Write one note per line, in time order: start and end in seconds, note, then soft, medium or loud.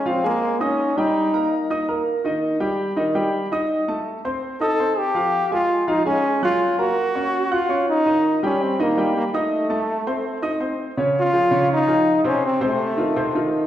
0.05 0.20 F3 medium
0.05 0.25 C4 loud
0.05 0.21 F4 medium
0.05 0.21 F5 medium
0.24 0.54 G#3 medium
0.24 0.64 A#3 medium
0.24 0.54 G#4 medium
0.24 0.54 G#5 medium
0.60 1.00 C#4 loud
0.60 0.90 D#4 medium
0.60 0.90 D#5 medium
0.60 0.91 D#6 medium
0.97 1.27 G3 medium
0.97 1.70 D#4 medium
0.97 1.27 G4 medium
0.97 1.27 G5 medium
1.34 1.63 A#3 medium
1.34 1.63 A#4 medium
1.34 1.63 A#5 medium
1.70 1.85 D#4 medium
1.70 1.85 D#5 medium
1.70 1.85 D#6 medium
1.88 2.18 A#3 medium
1.88 2.18 A#4 medium
1.88 2.18 A#5 medium
2.24 2.54 D#3 medium
2.24 2.54 D#4 medium
2.24 2.55 D#5 medium
2.60 2.90 G3 medium
2.60 2.90 G4 medium
2.60 2.90 G5 medium
2.96 3.12 D#3 medium
2.96 3.12 D#4 medium
2.96 3.12 D#5 medium
3.15 3.45 G3 medium
3.15 3.45 G4 medium
3.15 3.45 G5 medium
3.52 3.81 D#4 medium
3.52 3.82 D#5 medium
3.52 3.82 D#6 medium
3.88 4.18 A3 medium
3.88 4.18 A4 medium
3.88 4.18 A5 medium
4.25 4.54 C4 medium
4.25 4.55 C5 medium
4.25 4.55 C6 medium
4.60 4.75 D#4 medium
4.60 5.00 A4 loud
4.60 4.76 D#5 medium
4.60 4.76 D#6 medium
4.79 5.09 C4 medium
4.79 5.09 C5 medium
4.79 5.09 C6 medium
4.98 5.52 G4 loud
5.14 5.45 F3 medium
5.14 5.45 F4 medium
5.14 5.45 F5 medium
5.51 5.81 G#3 medium
5.51 5.90 F4 loud
5.51 5.82 G#4 medium
5.51 5.82 G#5 medium
5.88 6.03 F3 medium
5.88 6.05 D#4 loud
5.88 6.03 F4 medium
5.88 6.03 F5 medium
6.06 6.36 G#3 medium
6.06 6.40 C#4 loud
6.06 6.36 G#4 medium
6.06 6.36 G#5 medium
6.43 6.72 F#3 medium
6.43 6.80 F4 loud
6.43 6.73 C#5 medium
6.43 6.73 F#6 medium
6.78 7.08 A#3 medium
6.78 7.54 F#4 loud
6.78 7.09 A#4 medium
6.78 7.09 A#5 medium
7.15 7.45 C#4 medium
7.15 7.45 C#5 medium
7.15 7.45 C#6 medium
7.51 7.89 F4 loud
7.51 7.66 F#4 medium
7.51 7.67 F#5 medium
7.51 7.67 F#6 medium
7.69 7.99 C#4 medium
7.69 7.99 C#5 medium
7.69 8.00 C#6 medium
7.89 8.39 D#4 loud
8.06 8.36 D#3 medium
8.06 8.36 D#4 medium
8.06 8.36 D#5 medium
8.43 8.73 G3 medium
8.43 8.64 C#4 medium
8.43 8.73 G4 medium
8.43 8.73 G5 medium
8.62 8.80 C4 medium
8.79 8.94 D#3 medium
8.79 9.14 A#3 medium
8.79 8.94 D#4 medium
8.79 8.95 D#5 medium
8.97 9.27 G3 medium
8.97 9.27 G4 medium
8.97 9.28 G5 medium
9.17 9.25 A#3 medium
9.34 10.58 A3 medium
9.34 9.64 D#4 medium
9.34 9.64 D#5 medium
9.34 9.64 D#6 medium
9.70 10.00 A3 medium
9.70 10.00 A4 medium
9.70 10.00 A5 medium
10.07 10.37 C4 medium
10.07 10.37 C5 medium
10.07 10.37 C6 medium
10.42 10.58 D#4 medium
10.42 10.58 D#5 medium
10.42 10.58 D#6 medium
10.60 10.91 C4 medium
10.60 10.91 C5 medium
10.60 10.91 C6 medium
10.97 11.27 C#3 medium
10.97 11.27 C#4 medium
10.97 11.28 C#5 medium
11.19 11.68 F4 loud
11.33 11.48 F3 medium
11.33 11.48 F4 medium
11.33 11.49 G#4 medium
11.51 11.81 C#3 medium
11.51 11.81 C#4 medium
11.51 11.82 C#5 medium
11.73 12.23 D#4 loud
11.87 12.18 F3 medium
11.87 12.18 F4 medium
11.87 12.18 G#4 medium
12.24 12.54 C3 medium
12.24 12.55 C4 medium
12.24 12.43 C#4 medium
12.24 12.55 C5 medium
12.46 12.62 C4 loud
12.61 12.91 C3 medium
12.61 13.67 A3 medium
12.61 12.91 C4 medium
12.61 12.91 C5 medium
12.97 13.12 D#3 medium
12.97 13.13 D#4 medium
12.97 13.13 F4 medium
13.16 13.31 C3 medium
13.16 13.31 C4 medium
13.16 13.31 C5 medium
13.35 13.64 D#3 medium
13.35 13.65 D#4 medium
13.35 13.65 F4 medium